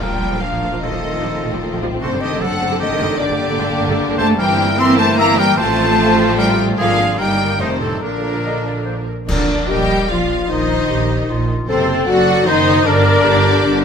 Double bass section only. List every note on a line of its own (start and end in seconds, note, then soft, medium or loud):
0.00 0.05 A#1 medium
0.10 0.15 A#1 medium
0.20 0.25 A#1 medium
0.31 0.35 A#1 medium
0.41 0.45 A#1 medium
0.51 0.55 A#1 medium
0.61 0.66 A#1 medium
0.72 0.76 A#1 medium
0.82 0.86 A#1 medium
0.92 0.96 A#1 medium
1.02 1.06 A#1 medium
1.13 1.17 A#1 medium
1.23 1.27 A#1 medium
1.34 1.37 A#1 medium
1.43 1.47 A#1 medium
1.52 1.56 A#1 medium
1.63 1.66 A#1 medium
1.72 1.76 A#1 loud
1.82 1.86 A#1 medium
1.92 1.96 A#1 medium
2.02 2.06 F#1 medium
2.11 2.15 F#1 medium
2.21 2.25 F#1 medium
2.31 2.35 F#1 medium
2.41 2.45 F#1 medium
2.50 2.54 F#1 medium
2.60 2.64 F#1 loud
2.70 2.74 F#1 medium
2.80 2.84 F#1 medium
2.89 2.93 F#1 loud
2.99 3.04 F#1 medium
3.09 3.13 F#1 medium
3.19 3.23 G1 loud
3.29 3.33 G1 medium
3.39 3.43 G1 medium
3.49 3.53 G1 loud
3.58 3.63 G1 medium
3.69 3.73 G1 medium
3.78 3.82 G1 loud
3.88 3.92 G1 medium
3.98 4.02 G1 medium
4.08 4.12 G1 loud
4.17 4.22 G1 medium
4.27 4.32 G1 medium
4.37 5.53 G1 loud
5.58 6.78 A1 loud
6.79 7.16 G#1 medium
7.19 7.60 G1 medium
7.60 8.02 F1 medium
8.03 9.07 A#1 medium
9.29 9.65 A#1 medium
9.69 10.05 A#1 medium
10.10 10.45 A#1 medium
10.49 10.85 A#1 medium
10.89 11.24 A#1 medium
11.29 11.64 A#1 medium
11.68 12.03 F#1 loud
12.08 12.43 F#1 loud
12.48 12.82 F#1 loud
12.87 13.21 G1 loud
13.26 13.60 G1 loud
13.65 13.85 G1 loud